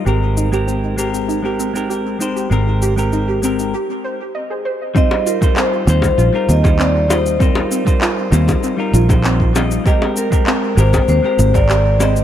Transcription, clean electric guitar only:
\new Staff \with { instrumentName = "Clean electric guitar" } { \time 4/4 \key ees \major \tempo 4 = 98 <aes c' g' bes'>8. <aes c' g' bes'>8. <aes c' g' bes'>8. <aes c' g' bes'>8 <aes c' g' bes'>8. <aes c' g' c''>8 | <aes c' g' bes'>8. <aes c' g' bes'>8. <aes c' g' bes'>8 r2 | <g ees' f' c''>8. <g ees' f' c''>8. <g ees' f' c''>8. <g ees' f' bes'>8 <g ees' f' c''>8. <g ees' f' ees''>8 | <g ees' f' c''>8. <g ees' f' c''>8. <g ees' f' c''>8. <g ees' f' bes'>8 <g ees' f' c''>8. <g ees' f' ees''>8 |
<aes c' g' bes'>8. <aes c' g' bes'>8. <aes c' g' bes'>8. <aes c' g' bes'>8 <aes c' g' bes'>8. <aes c' g' c''>8 | }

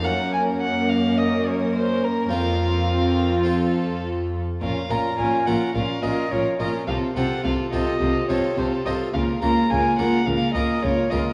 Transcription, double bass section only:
\new Staff \with { instrumentName = "Double bass section" } { \clef bass \time 4/4 \key bes \minor \tempo 4 = 106 r1 | r1 | bes,,8 bes,,8 bes,,8 bes,,8 bes,,8 bes,,8 bes,,8 bes,,8 | c,8 c,8 c,8 c,8 c,8 c,8 c,8 c,8 |
des,8 des,8 des,8 des,8 des,8 des,8 des,8 des,8 | }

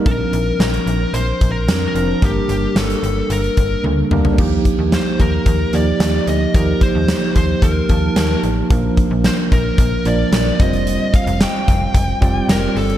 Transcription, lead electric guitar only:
\new Staff \with { instrumentName = "Lead electric guitar" } { \time 4/4 \key ees \lydian \tempo 4 = 111 bes'4 bes'4 \tuplet 3/2 { c''4 bes'8~ bes'8 bes'4 } | g'4 a'4 bes'4 r4 | r4 c''8 bes'4 d''4 ees''8 | bes'8 c''4 c''8 bes'4. r8 |
r4 c''8 bes'4 d''4 ees''8~ | ees''8 f''8 g''2 bes'8 a'8 | }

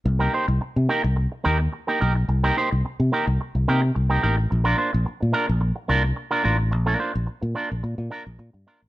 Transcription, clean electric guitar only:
\new Staff \with { instrumentName = "Clean electric guitar" } { \time 4/4 \key c \minor \tempo 4 = 108 r16 <bes ees' g' bes'>16 <bes ees' g' c''>16 r8. <bes ees' g' bes'>16 r8. <bes ees' g' bes'>16 r8 <bes ees' g' bes'>16 <bes ees' g' bes'>16 r16 | r16 <bes ees' g' bes'>16 <bes ees' g' c''>16 r8. <bes ees' g' bes'>16 r8. <bes ees' g' bes'>16 r8 <bes ees' g' bes'>16 <bes ees' g' bes'>16 r16 | r16 <bes d' f' bes'>16 <bes d' f' c''>16 r8. <bes d' f' bes'>16 r8. <bes d' f' bes'>16 r8 <bes d' f' bes'>16 <bes d' f' bes'>16 r16 | r16 <bes d' f' bes'>16 <bes d' f' c''>16 r8. <bes d' f' bes'>16 r8. <bes d' f' bes'>16 r8. <bes d' f' bes'>16 r16 | }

